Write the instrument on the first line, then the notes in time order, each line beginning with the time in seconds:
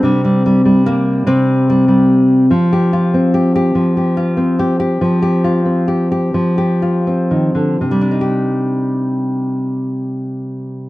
nylon-string guitar
Already playing: C4
0.03 C3 G3
0.24 G3
0.46 G3
0.65 G3
0.86 A#3
1.26 C3 C4
1.70 G3
1.88 G3
2.51 F3
2.73 G4
2.93 F4
3.14 C4
3.34 G4
3.56 G4
3.75 F3
3.97 G4
4.17 F4
4.37 C4
4.59 G4
4.79 G4
5.01 F3
5.22 G4
5.44 F4
5.65 C4
5.88 G4
6.12 G4
6.34 F3
6.58 G4
6.82 F4
7.07 C4
7.31 D#3
7.55 D3
7.81 C3
7.91 G3
8.01 D4
8.11 D#4
8.21 G4